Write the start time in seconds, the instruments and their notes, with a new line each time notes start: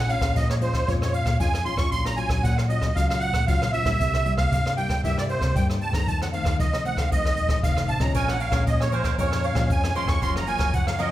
Already playing: fingered electric bass A#1, nylon-string guitar A#2, accordion F#5
0.09 nylon-string guitar G#3 C#4 F4, accordion F5, closed hi-hat
0.20 fingered electric bass A#1, kick, cross-stick
0.35 nylon-string guitar F2, fingered electric bass A#2, accordion D#5, kick, closed hi-hat
0.50 accordion C#5, cross-stick
0.61 nylon-string guitar G#3 C#4 F4, accordion C5, closed hi-hat
0.73 kick, cross-stick, closed hi-hat
0.88 fingered electric bass F2, nylon-string guitar A#2 G#3 C#4 F4, accordion C#5, kick, closed hi-hat
1.02 accordion C#5, cross-stick
1.13 accordion F5, closed hi-hat
1.24 fingered electric bass A#2, kick, cross-stick, closed hi-hat
1.40 nylon-string guitar F2 G#3 C#4 F4, fingered electric bass F2, accordion G#5, kick, closed hi-hat
1.54 cross-stick
1.65 nylon-string guitar G#3 C#4 F4, accordion C6, closed hi-hat
1.76 fingered electric bass F2, nylon-string guitar F#3 C#4 F4, accordion C#6, kick, cross-stick
1.92 fingered electric bass A#1, nylon-string guitar A#2, accordion C6, kick, closed hi-hat
2.05 accordion A#5, cross-stick
2.17 nylon-string guitar F#3 C#4 F4, accordion G#5, closed hi-hat
2.28 fingered electric bass A#1, kick, cross-stick
2.43 nylon-string guitar A#2, fingered electric bass A#2, accordion F#5, kick, closed hi-hat
2.57 accordion F5, cross-stick
2.69 nylon-string guitar F#3 C#4 F4, accordion D#5, closed hi-hat
2.81 kick, cross-stick
2.95 fingered electric bass C#2, nylon-string guitar A#2 F#3 C#4 F4, accordion F5, kick, closed hi-hat
3.09 accordion F5, cross-stick
3.20 accordion F#5, closed hi-hat
3.32 fingered electric bass A#2, kick, cross-stick
3.47 fingered electric bass C#2, nylon-string guitar A#2 F#3 C#4 F4, accordion F5, kick, closed hi-hat
3.62 cross-stick
3.72 nylon-string guitar F#3 C#4 F4, accordion E5, closed hi-hat
3.84 fingered electric bass A#1, nylon-string guitar G3 A#3 E4, kick, cross-stick
4.00 fingered electric bass C2, nylon-string guitar C3, kick, closed hi-hat
4.14 cross-stick, closed hi-hat
4.26 nylon-string guitar G3 A#3 E4, closed hi-hat
4.35 fingered electric bass C2, accordion F5, kick, cross-stick
4.52 nylon-string guitar G2, fingered electric bass C3, kick, closed hi-hat
4.66 cross-stick
4.77 nylon-string guitar G3 A#3 E4, accordion G5, closed hi-hat
4.89 kick, cross-stick, closed hi-hat
5.04 fingered electric bass G2, nylon-string guitar C3 G3 A#3 E4, accordion E5, kick, closed hi-hat
5.18 accordion D5, cross-stick
5.29 accordion C5, closed hi-hat
5.39 fingered electric bass C3, kick, cross-stick, closed hi-hat
5.56 fingered electric bass G2, nylon-string guitar G2 G3 A#3 E4, accordion G5, kick, closed hi-hat
5.70 cross-stick
5.81 accordion A5, closed hi-hat
5.91 fingered electric bass G2, nylon-string guitar D#3 A3 C4, accordion A#5, kick, cross-stick
6.07 nylon-string guitar F2, fingered electric bass F2, accordion A5, kick, closed hi-hat
6.22 accordion F#5, cross-stick
6.33 nylon-string guitar D#3 A3 C4, accordion F5, closed hi-hat
6.43 fingered electric bass F2, kick, cross-stick
6.59 nylon-string guitar C3, fingered electric bass F3, accordion D#5, kick, closed hi-hat
6.73 cross-stick
6.84 nylon-string guitar D#3 A3 C4, accordion F#5, closed hi-hat
6.97 accordion F5, kick, cross-stick
7.11 fingered electric bass C2, nylon-string guitar F2 D#3 A3 C4, accordion D#5, kick, closed hi-hat
7.26 cross-stick
7.36 fingered electric bass D#1, closed hi-hat
7.49 kick, cross-stick
7.63 fingered electric bass F1, nylon-string guitar C3 D#3 A3 C4, accordion F5, kick, closed hi-hat
7.77 cross-stick
7.88 fingered electric bass A1, accordion A5, closed hi-hat
8.00 nylon-string guitar F3 G#3 C#4, accordion A#5, kick, cross-stick
8.14 fingered electric bass A#1, nylon-string guitar A#2, cavaquinho A#4 C#5 F5 G#5, accordion G#5, kick, closed hi-hat
8.28 accordion F#5, cross-stick, closed hi-hat
8.39 cavaquinho A#4 C#5 F5 G#5, accordion F5, closed hi-hat
8.50 fingered electric bass A#1, nylon-string guitar F3 G#3 C#4, cavaquinho A#4 C#5 F5 G#5, kick, cross-stick
8.66 nylon-string guitar F2, fingered electric bass A#2, accordion D#5, kick, closed hi-hat
8.80 accordion C#5, cavaquinho C#5 F5 G#5, cross-stick
8.92 nylon-string guitar F3 G#3 C#4, cavaquinho A#4 C#5 F5 G#5, accordion C5, closed hi-hat
9.04 cavaquinho A#4 C#5 F5 G#5, kick, cross-stick, closed hi-hat
9.18 fingered electric bass F2, nylon-string guitar A#2 F3 G#3 C#4, cavaquinho A#4 C#5 F5 G#5, accordion C#5, kick, closed hi-hat
9.32 accordion C#5, cross-stick
9.43 cavaquinho A#4 C#5 F5 G#5, accordion F5, closed hi-hat
9.54 fingered electric bass A#2, nylon-string guitar F3 G#3 C#4, cavaquinho C#5 F5 G#5, kick, cross-stick, closed hi-hat
9.70 fingered electric bass F2, nylon-string guitar F2, accordion G#5, kick, closed hi-hat
9.84 cavaquinho C#5 F5 G#5, cross-stick
9.95 nylon-string guitar F3 G#3 C#4, cavaquinho A#4 C#5 F5 G#5, accordion C6, closed hi-hat
10.06 fingered electric bass F2, cavaquinho C#5 F5 G#5, accordion C#6, kick, cross-stick
10.21 fingered electric bass F#1, nylon-string guitar F#2 F3 A#3 C#4, cavaquinho F#4 A#4 C#5 F5, accordion C6, kick, closed hi-hat
10.36 accordion A#5, cross-stick
10.47 nylon-string guitar F3 A#3 C#4, cavaquinho F#4 A#4 C#5 F5, accordion G#5, closed hi-hat
10.57 fingered electric bass F#1, cavaquinho F#4 A#4 C#5 F5, kick, cross-stick
10.73 fingered electric bass F#2, nylon-string guitar C#3, accordion F#5, kick, closed hi-hat
10.87 cavaquinho A#4 C#5 F5, accordion F5, cross-stick
10.98 nylon-string guitar F3 A#3 C#4, cavaquinho F#4 A#4 C#5 F5, accordion D#5, closed hi-hat